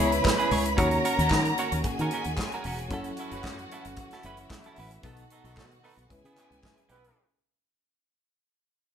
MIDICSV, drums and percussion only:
0, 0, Header, 1, 2, 480
1, 0, Start_track
1, 0, Key_signature, 4, "minor"
1, 0, Tempo, 532387
1, 698, Time_signature, 4, 2, 24, 8
1, 8066, End_track
2, 0, Start_track
2, 0, Title_t, "Drums"
2, 111, Note_on_c, 9, 42, 50
2, 201, Note_off_c, 9, 42, 0
2, 224, Note_on_c, 9, 36, 109
2, 225, Note_on_c, 9, 39, 106
2, 242, Note_on_c, 9, 38, 117
2, 314, Note_off_c, 9, 36, 0
2, 316, Note_off_c, 9, 39, 0
2, 332, Note_off_c, 9, 38, 0
2, 356, Note_on_c, 9, 42, 46
2, 446, Note_off_c, 9, 42, 0
2, 463, Note_on_c, 9, 46, 76
2, 553, Note_off_c, 9, 46, 0
2, 593, Note_on_c, 9, 42, 55
2, 683, Note_off_c, 9, 42, 0
2, 703, Note_on_c, 9, 36, 127
2, 706, Note_on_c, 9, 42, 78
2, 793, Note_off_c, 9, 36, 0
2, 796, Note_off_c, 9, 42, 0
2, 822, Note_on_c, 9, 42, 44
2, 912, Note_off_c, 9, 42, 0
2, 948, Note_on_c, 9, 42, 71
2, 1038, Note_off_c, 9, 42, 0
2, 1075, Note_on_c, 9, 42, 49
2, 1165, Note_off_c, 9, 42, 0
2, 1174, Note_on_c, 9, 39, 98
2, 1180, Note_on_c, 9, 36, 104
2, 1193, Note_on_c, 9, 38, 98
2, 1264, Note_off_c, 9, 39, 0
2, 1270, Note_off_c, 9, 36, 0
2, 1283, Note_off_c, 9, 38, 0
2, 1310, Note_on_c, 9, 42, 50
2, 1400, Note_off_c, 9, 42, 0
2, 1423, Note_on_c, 9, 42, 63
2, 1513, Note_off_c, 9, 42, 0
2, 1551, Note_on_c, 9, 42, 53
2, 1641, Note_off_c, 9, 42, 0
2, 1659, Note_on_c, 9, 42, 76
2, 1662, Note_on_c, 9, 36, 100
2, 1749, Note_off_c, 9, 42, 0
2, 1752, Note_off_c, 9, 36, 0
2, 1794, Note_on_c, 9, 42, 50
2, 1885, Note_off_c, 9, 42, 0
2, 1902, Note_on_c, 9, 42, 71
2, 1992, Note_off_c, 9, 42, 0
2, 2024, Note_on_c, 9, 42, 52
2, 2114, Note_off_c, 9, 42, 0
2, 2141, Note_on_c, 9, 36, 115
2, 2142, Note_on_c, 9, 39, 110
2, 2157, Note_on_c, 9, 38, 127
2, 2231, Note_off_c, 9, 36, 0
2, 2232, Note_off_c, 9, 39, 0
2, 2248, Note_off_c, 9, 38, 0
2, 2273, Note_on_c, 9, 42, 46
2, 2363, Note_off_c, 9, 42, 0
2, 2380, Note_on_c, 9, 46, 81
2, 2470, Note_off_c, 9, 46, 0
2, 2511, Note_on_c, 9, 42, 59
2, 2602, Note_off_c, 9, 42, 0
2, 2619, Note_on_c, 9, 42, 85
2, 2620, Note_on_c, 9, 36, 127
2, 2709, Note_off_c, 9, 42, 0
2, 2710, Note_off_c, 9, 36, 0
2, 2742, Note_on_c, 9, 42, 50
2, 2832, Note_off_c, 9, 42, 0
2, 2858, Note_on_c, 9, 42, 73
2, 2948, Note_off_c, 9, 42, 0
2, 2989, Note_on_c, 9, 42, 46
2, 3080, Note_off_c, 9, 42, 0
2, 3100, Note_on_c, 9, 36, 103
2, 3104, Note_on_c, 9, 39, 101
2, 3112, Note_on_c, 9, 38, 97
2, 3191, Note_off_c, 9, 36, 0
2, 3194, Note_off_c, 9, 39, 0
2, 3202, Note_off_c, 9, 38, 0
2, 3236, Note_on_c, 9, 42, 54
2, 3326, Note_off_c, 9, 42, 0
2, 3350, Note_on_c, 9, 42, 61
2, 3440, Note_off_c, 9, 42, 0
2, 3470, Note_on_c, 9, 42, 46
2, 3561, Note_off_c, 9, 42, 0
2, 3576, Note_on_c, 9, 42, 85
2, 3581, Note_on_c, 9, 36, 101
2, 3666, Note_off_c, 9, 42, 0
2, 3671, Note_off_c, 9, 36, 0
2, 3705, Note_on_c, 9, 42, 46
2, 3717, Note_on_c, 9, 38, 39
2, 3795, Note_off_c, 9, 42, 0
2, 3807, Note_off_c, 9, 38, 0
2, 3816, Note_on_c, 9, 42, 72
2, 3907, Note_off_c, 9, 42, 0
2, 3941, Note_on_c, 9, 42, 45
2, 4031, Note_off_c, 9, 42, 0
2, 4059, Note_on_c, 9, 36, 125
2, 4064, Note_on_c, 9, 39, 103
2, 4068, Note_on_c, 9, 38, 127
2, 4149, Note_off_c, 9, 36, 0
2, 4154, Note_off_c, 9, 39, 0
2, 4158, Note_off_c, 9, 38, 0
2, 4183, Note_on_c, 9, 42, 50
2, 4273, Note_off_c, 9, 42, 0
2, 4294, Note_on_c, 9, 46, 77
2, 4384, Note_off_c, 9, 46, 0
2, 4427, Note_on_c, 9, 42, 57
2, 4518, Note_off_c, 9, 42, 0
2, 4538, Note_on_c, 9, 42, 84
2, 4539, Note_on_c, 9, 36, 127
2, 4628, Note_off_c, 9, 42, 0
2, 4630, Note_off_c, 9, 36, 0
2, 4659, Note_on_c, 9, 42, 48
2, 4749, Note_off_c, 9, 42, 0
2, 4783, Note_on_c, 9, 42, 67
2, 4873, Note_off_c, 9, 42, 0
2, 4913, Note_on_c, 9, 42, 51
2, 5003, Note_off_c, 9, 42, 0
2, 5021, Note_on_c, 9, 39, 101
2, 5022, Note_on_c, 9, 36, 102
2, 5036, Note_on_c, 9, 38, 96
2, 5111, Note_off_c, 9, 39, 0
2, 5112, Note_off_c, 9, 36, 0
2, 5126, Note_off_c, 9, 38, 0
2, 5153, Note_on_c, 9, 42, 50
2, 5244, Note_off_c, 9, 42, 0
2, 5269, Note_on_c, 9, 46, 74
2, 5360, Note_off_c, 9, 46, 0
2, 5397, Note_on_c, 9, 42, 45
2, 5487, Note_off_c, 9, 42, 0
2, 5503, Note_on_c, 9, 36, 96
2, 5503, Note_on_c, 9, 42, 80
2, 5593, Note_off_c, 9, 36, 0
2, 5593, Note_off_c, 9, 42, 0
2, 5636, Note_on_c, 9, 42, 51
2, 5727, Note_off_c, 9, 42, 0
2, 5745, Note_on_c, 9, 39, 110
2, 5748, Note_on_c, 9, 42, 72
2, 5835, Note_off_c, 9, 39, 0
2, 5838, Note_off_c, 9, 42, 0
2, 5877, Note_on_c, 9, 42, 48
2, 5967, Note_off_c, 9, 42, 0
2, 5981, Note_on_c, 9, 36, 126
2, 5984, Note_on_c, 9, 39, 96
2, 5998, Note_on_c, 9, 38, 127
2, 6071, Note_off_c, 9, 36, 0
2, 6075, Note_off_c, 9, 39, 0
2, 6088, Note_off_c, 9, 38, 0
2, 6110, Note_on_c, 9, 42, 45
2, 6200, Note_off_c, 9, 42, 0
2, 6216, Note_on_c, 9, 42, 68
2, 6306, Note_off_c, 9, 42, 0
2, 6352, Note_on_c, 9, 42, 51
2, 6442, Note_off_c, 9, 42, 0
2, 8066, End_track
0, 0, End_of_file